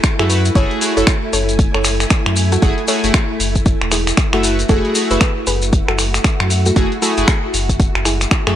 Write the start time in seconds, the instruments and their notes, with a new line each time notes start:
Already playing: string machine A3 E4 F#4
0.04 finger snap, kick, closed hi-hat, shekere
0.19 sub bass F#2, analog polysynth A3 E4 F#4 A4, synth pluck E4 G#4, finger snap, closed hi-hat
0.29 analog polysynth A3 E4 F#4 B4, open hi-hat, shekere
0.45 closed hi-hat, shekere
0.55 sub bass F#1, analog polysynth A3 E4 F#4 G#4, synth pluck A4 C#5, string machine G#5, kick, closed hi-hat, shekere
0.71 closed hi-hat
0.81 analog polysynth A3 E4 F#4 G#4, open hi-hat, shekere
0.97 sub bass F#1, analog polysynth A3 E4 F#4 A4, synth pluck A4 C#5, closed hi-hat, shekere
1.07 finger snap, kick, closed hi-hat, shekere
1.33 sub bass F#1, synth pluck A4 C#5, open hi-hat, shekere
1.49 closed hi-hat, shekere
1.59 kick, closed hi-hat, shekere
1.74 sub bass F#1, synth pluck A4 C#5, finger snap
1.84 finger snap, open hi-hat, shekere
2.00 finger snap, closed hi-hat, shekere
2.10 finger snap, kick, closed hi-hat, shekere
2.26 sub bass F#2, finger snap
2.36 open hi-hat, shekere
2.52 synth pluck F#4 A4, closed hi-hat, shekere
2.62 sub bass F#1, analog polysynth A3 E4 F#4 G#4, kick, closed hi-hat, shekere
2.78 closed hi-hat
2.88 analog polysynth A3 E4 F#4 G#4, synth pluck A4 C#5, open hi-hat, shekere
3.04 sub bass F#1, analog polysynth A3 E4 F#4 G#4, closed hi-hat, shekere
3.14 finger snap, kick, closed hi-hat, shekere
3.40 sub bass F#1, open hi-hat, shekere
3.55 kick, closed hi-hat, shekere
3.66 kick, closed hi-hat, shekere
3.81 sub bass E1, finger snap
3.91 synth pluck E4 G#4, finger snap, open hi-hat, shekere
4.07 finger snap, closed hi-hat, shekere
4.17 finger snap, kick, closed hi-hat, shekere
4.33 sub bass F#1, analog polysynth A3 E4 F#4 A4, synth pluck A3 F#4, finger snap, closed hi-hat
4.43 analog polysynth A3 E4 F#4 B4, open hi-hat, shekere
4.59 closed hi-hat, shekere
4.69 sub bass F#1, analog polysynth A3 E4 F#4 G#4, string machine F#4, synth pluck F#4 A4, kick, closed hi-hat, shekere
4.85 closed hi-hat
4.95 analog polysynth A3 E4 F#4 G#4, open hi-hat, shekere
5.11 sub bass F#1, analog polysynth A3 E4 F#4 A4, synth pluck G#4 B4, closed hi-hat, shekere
5.21 finger snap, kick, closed hi-hat, shekere
5.47 sub bass F#1, synth pluck G#4 B4, open hi-hat, shekere
5.62 closed hi-hat, shekere
5.73 kick, closed hi-hat, shekere
5.88 sub bass F#1, synth pluck F#4 A4, finger snap
5.98 finger snap, open hi-hat, shekere
6.14 finger snap, closed hi-hat, shekere
6.24 finger snap, kick, closed hi-hat, shekere
6.40 sub bass F#2, finger snap
6.50 open hi-hat, shekere
6.66 synth pluck A3 F#4, closed hi-hat, shekere
6.76 sub bass F#1, analog polysynth A3 E4 F#4 G#4, kick, closed hi-hat, shekere
6.92 closed hi-hat
7.02 analog polysynth A3 E4 F#4 G#4, synth pluck F#4 A4, open hi-hat, shekere
7.17 sub bass F#1, analog polysynth A3 E4 F#4 G#4, closed hi-hat, shekere
7.28 finger snap, kick, closed hi-hat, shekere
7.54 sub bass F#1, open hi-hat, shekere
7.69 kick, closed hi-hat, shekere
7.80 kick, closed hi-hat, shekere
7.95 sub bass F#1, finger snap
8.05 synth pluck E4 G#4, finger snap, open hi-hat, shekere
8.21 finger snap, closed hi-hat, shekere
8.31 finger snap, kick, closed hi-hat, shekere
8.47 sub bass F#2, analog polysynth A3 E4 F#4 A4, synth pluck E4 G#4, finger snap, closed hi-hat